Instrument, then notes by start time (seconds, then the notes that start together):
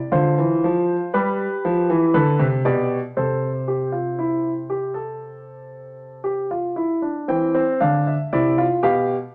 grand piano
0.12 D3 F4 C5
0.38 E3
0.64 F3
1.14 G3 G4 B4
1.65 F3
1.90 E3
2.14 D3 A4 B4
2.39 C3
2.65 B2 G4 D5
3.17 C3 A4 C5
3.68 G4
3.92 F4
4.19 E4
4.70 G4
4.94 A4
6.24 G4
6.51 F4
6.76 E4
7.02 D4
7.28 E3 C4 G5
7.55 C4
7.80 D3 D4 F5
8.07 E5
8.33 C3 E4 D5
8.58 F4
8.83 B2 G4 F5